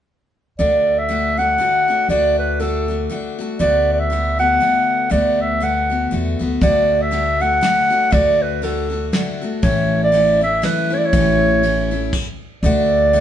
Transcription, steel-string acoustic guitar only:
0.59 D3 A3 D4 F#4
1.09 D3 A3 D4 F#4
1.37 A3 D4 F#4
1.58 D3 A3 D4 F#4
1.88 A3 D4 F#4
2.09 D3 A3 D4 F#4
2.60 D3 A3 D4 F#4
2.88 A3 D4 F#4
3.10 D3 A3 D4 F#4
3.39 A3 D4 F#4
3.59 D3 A3 B3 F#4
4.10 D3 A3 B3 F#4
4.39 A3 B3 F#4
4.60 D3 A3 B3 F#4
5.10 D3 A3 B3 F#4
5.60 D3 A3 B3 F#4
5.90 A3 B3 F#4
6.11 D3 A3 B3 F#4
6.39 A3 B3 F#4
6.61 D3 A3 D4 F#4
7.11 D3 A3 D4 F#4
7.40 A3 D4 F#4
7.61 D3 A3 D4 F#4
7.90 A3 D4 F#4
8.11 D3 A3 D4 F#4
8.62 D3 A3 D4 F#4
8.90 A3 D4 F#4
9.13 D3 A3 D4 F#4
9.42 A3 D4 F#4
9.63 A2 E3 A3 C#4 E4
10.12 E3 A3 C#4 E4
10.41 A3 C#4 E4
10.62 E3 A3 C#4 E4
10.90 A3 C#4 E4
11.13 A2 E3 A3 C#4 E4
11.63 E3 A3 C#4 E4
11.91 A3 C#4 E4
12.64 D3 A3 D4 F#4
13.13 D3 A3 D4 F#4

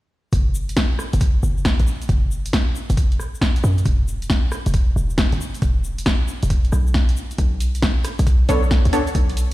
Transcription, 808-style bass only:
0.33 F#1
1.13 F#1
1.43 F#1
1.80 A1
2.09 F#1
2.90 F#1
3.64 F#2
3.85 E1
4.66 E1
4.96 E1
5.33 G1
5.62 E1
6.43 E1
6.73 B1
7.39 B1
8.19 B1
8.49 B1
8.85 D2
9.15 B1

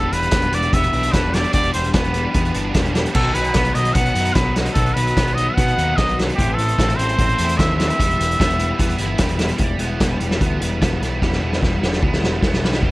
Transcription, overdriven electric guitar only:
Already playing: G3 B3 D4
0.33 B3
0.53 G3
0.73 B3
0.93 D4
1.14 G3
1.35 G3
1.54 G3
1.94 B3
2.14 G3
2.35 B3
2.54 D4
2.74 G3
2.94 G3
3.15 F#3
3.54 B3
3.75 F#3
3.95 B3
4.15 D#4
4.35 F#3
4.55 F#3
4.76 F#3
5.17 B3
5.37 F#3
5.57 B3
5.76 D#4
5.97 F#3
6.18 F#3
6.38 E3
6.79 C4
6.98 E3
7.18 C4
7.38 E4
7.58 E3
7.78 E3
7.98 G3
8.38 B3
8.58 G3
8.78 B3
8.98 E4
9.18 G3
9.38 G3
9.59 G3
9.79 B3
10.00 G3
10.20 G3
10.41 B3
10.60 G3
10.80 B3
11.01 G3
11.21 G3
11.41 B3
11.62 G3
11.83 G3
12.02 B3
12.23 G3
12.43 B3
12.63 G3
12.82 G3 B3 E4 G4

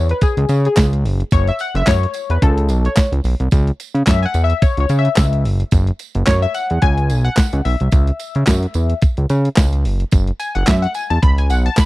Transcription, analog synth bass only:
Already playing: E2
0.37 C#2
0.49 C#3
0.77 C#2
1.04 F#1
1.32 F#1
1.75 F#1
1.87 F#2
2.30 E2
2.42 C#2
2.69 B1
3.12 C#2
3.24 B1
3.40 C2
3.52 C#2
3.94 C#3
4.07 F#2
4.34 E2
4.78 C#2
4.90 C#3
5.17 C#2
5.45 F#1
5.72 F#1
6.15 F#1
6.27 F#2
6.71 E2
6.83 C#2
7.10 B1
7.53 C#2
7.65 B1
7.81 C2
7.92 C#2
8.36 C#3
8.47 F#2
8.75 E2
9.18 C#2
9.30 C#3
9.57 C#2
9.85 F#1
10.12 F#1
10.56 F#1
10.68 F#2
11.10 E2
11.23 C#2
11.50 B1

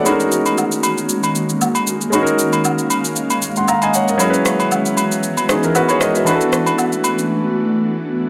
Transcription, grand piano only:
Already playing: A4 D5
0.03 G#3 C#4 D#4
0.08 F#4 A#4
2.10 G#3 C#4 D#4
2.15 F#4 G#4
2.23 A#4
3.57 F#5 C6
3.69 F5 A#5
3.83 D#5 G#5
3.95 C#5 F#5
4.09 A#4 D#5
4.18 F#3 C#4 E4
4.22 G#4 A#4
4.30 B4
5.50 D#4 G#4
5.64 E4 A#4
5.76 F#4 B4
5.90 G#4 C#5
6.02 A#4 D#5
6.16 B4 E5
6.25 E3 D4 F#4
6.29 G#4 B4
6.35 A4

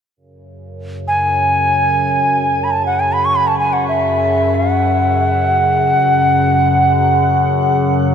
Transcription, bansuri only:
1.08 G#5
2.64 B5
2.71 A5
2.86 F#5
3.00 G#5
3.12 B5
3.25 C#6
3.36 B5
3.47 A5
3.59 G#5
3.73 F#5
3.88 E5
4.55 F#5

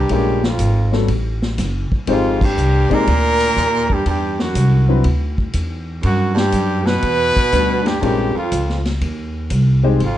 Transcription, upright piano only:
0.10 G#3 A#3 C#4 F4 A#4
0.92 G3 B3 C#4 F#4 A4
2.07 G#3 C4 D#4 G4 C5
2.90 G#3 C4 D#4 G4 D5
4.89 F#3 C4 D4 E4 B4
7.53 G3 B3 D4 F#4 B4
8.02 G#3 C4 C#4 F4 A#4
9.83 G#3 C4 D#4 G4 C5

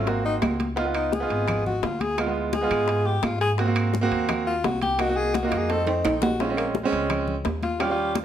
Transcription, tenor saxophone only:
0.08 A#3
0.26 D#4
0.96 D#4
1.13 G#4
1.66 F#4
1.84 F4
2.01 G#4
2.36 E4
2.54 G#4
3.06 G4
3.24 F4
3.41 G#4
4.47 F4
4.65 F#4
4.82 G4
5.00 F#4
5.17 G#4
5.35 F#4
5.47 F4
5.58 G#4
5.70 A4
5.87 C4
6.05 D#4
6.23 F#4
6.41 F4
6.57 A#3
7.63 F4
7.80 G4

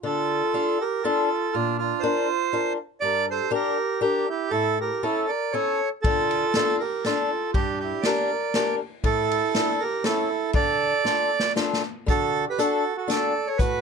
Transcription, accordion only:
0.05 A4
0.81 A#4
1.04 A4
1.53 F4
1.78 F4
2.00 C5
3.01 D5
3.31 C5
3.55 A#4
4.02 G4
4.30 G4
4.50 A4
4.81 A#4
5.03 A4
5.29 D5
5.52 C#5
6.02 A4
6.80 A#4
7.04 A4
7.54 G4
7.80 G4
8.02 D5
9.05 A4
9.80 A#4
10.04 A4
10.55 D5
12.10 A4
12.50 B4
12.59 A4
12.98 A4
13.10 D5
13.47 C#5
13.58 B4

